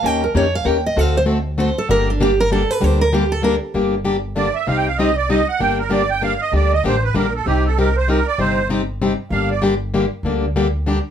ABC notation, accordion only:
X:1
M:3/4
L:1/8
Q:"Swing" 1/4=194
K:Gm
V:1 name="Accordion"
z6 | z6 | z6 | z6 |
z4 d =e | (3f g f e d e ^f | g B d g f e | d e c =B _B A |
G A B c B d | c2 z4 | f d z4 | z6 |]